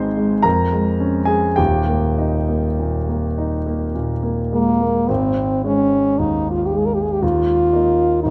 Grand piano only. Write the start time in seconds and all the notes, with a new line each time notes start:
Already playing: G#1 G#3 C4 D#4 G#4 C5 G#5 C6
0.17 G#3
0.43 F2 A#4 A#5
0.72 G#3
1.00 C#4
1.25 G#3 G#4 G#5
1.56 D#1 D#2 G4 G5
1.87 A#3
2.18 D#4
2.49 A#3
2.79 A#2
3.09 A#3
3.38 D#4
3.67 A#3
3.95 A#2
4.23 A#3
4.52 G#3
4.81 A#3
5.09 G#1
5.64 G#3
6.19 D#2
6.71 G#3
7.23 D#2
7.73 A#3 D#4
8.25 G#1